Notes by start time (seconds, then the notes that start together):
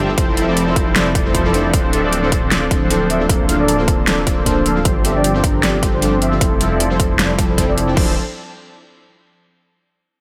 Already playing: G1
0.00 F3 C4 D4 G4 E5
0.08 G3 C4 E4 F4 A4
0.18 F1 F3 C4 E4 A4 C5, kick, closed hi-hat
0.36 F3 G3 C4 E4 F4 A4 E5, closed hi-hat
0.48 F3 C4 E4 A4 D5
0.57 closed hi-hat
0.66 F3 G3 C4 E4 F4 A4 C5
0.76 F3 C4 E4 A4 C5, kick, closed hi-hat
0.95 F3 G3 C4 E4 F4 A4 D5, snare, closed hi-hat
1.15 F3 C4 E4 A4 D5, kick, closed hi-hat
1.25 F3 G3 C4 E4 F4 A4 C5
1.35 kick, closed hi-hat
1.44 F3 G3 C4 E4 F4 A4 D5
1.53 F3 C4 D4 E4 A4 C5 D5, closed hi-hat
1.74 D1 F3 C4 D4 A4 C5, kick, closed hi-hat
1.92 F3 C4 D4 E4 A4 E5, closed hi-hat
2.04 F3 C4 D4 A4 D5
2.13 closed hi-hat
2.22 F3 C4 D4 E4 A4 C5
2.32 F3 C4 D4 A4 C5, kick, closed hi-hat
2.51 F3 C4 D4 E4 A4 D5, snare, closed hi-hat
2.70 F3 C4 D4 E4 A4 C5, kick, closed hi-hat
2.82 F3 C4 D4 A4 C5
2.89 F3 C4 D4 E4 A4 C5, closed hi-hat
3.10 F3 C4 D4 A4 E5, closed hi-hat
3.19 A#3 C4 D4 F4 A4
3.29 D1 F3 A#3 D4 A4 C5, kick, closed hi-hat
3.48 F3 A#3 C4 D4 F4 A4 F5, closed hi-hat
3.59 F3 A#3 D4 A4 D5
3.68 closed hi-hat
3.78 F3 A#3 C4 D4 F4 A4 C5
3.88 F3 A#3 D4 A4 C5, kick, closed hi-hat
4.06 F3 A#3 C4 D4 F4 A4 D5, snare, closed hi-hat
4.26 F3 A#3 C4 D4 F4 A4 C5, kick, closed hi-hat
4.37 F3 A#3 D4 A4 C5
4.45 F3 A#3 C4 D4 F4 A4 C5, kick, closed hi-hat
4.66 F3 A#3 D4 A4 F5, closed hi-hat
4.75 G3 C4 D4 F4 A4
4.85 G1 F3 C4 D4 G4 C5, kick, closed hi-hat
5.04 F3 G3 C4 D4 F4 G4 A4 E5, closed hi-hat
5.15 F3 C4 D4 G4 D5
5.24 closed hi-hat
5.34 F3 G3 C4 D4 F4 G4 A4 C5
5.44 F3 C4 D4 G4 A#4, kick, closed hi-hat
5.62 F3 G3 C4 D4 F4 G4 A4 D5, snare, closed hi-hat
5.82 F3 G3 C4 D4 F4 G4 A4 C5, kick, closed hi-hat
5.93 F3 C4 D4 G4 C5
6.01 F3 G3 C4 D4 F4 G4 A4 C5, closed hi-hat
6.22 F3 C4 D4 G4 E5, closed hi-hat
6.31 G3 C4 E4 F4 A4
6.41 F1 F3 C4 E4 A4 C5, kick, closed hi-hat
6.60 F3 G3 C4 E4 F4 A4 E5, closed hi-hat
6.71 F3 C4 E4 A4 D5
6.80 closed hi-hat
6.90 F3 G3 C4 E4 F4 A4 C5
7.00 F3 C4 E4 A4 C5, kick, closed hi-hat
7.18 F3 G3 C4 E4 F4 A4 D5, snare, closed hi-hat
7.38 F3 G3 C4 E4 F4 A4 D5, kick, closed hi-hat
7.49 F3 C4 E4 A4 C5
7.57 G3 C4 E4 F4 A4, kick, closed hi-hat
7.68 F3 C4 E4 A4 D5
7.77 F3 C4 E4 A4 D5, closed hi-hat
7.87 F3 C4 D4 E4 A4
7.94 D1 F3 C4 D4 A4 C5, kick, crash
7.99 E4 A4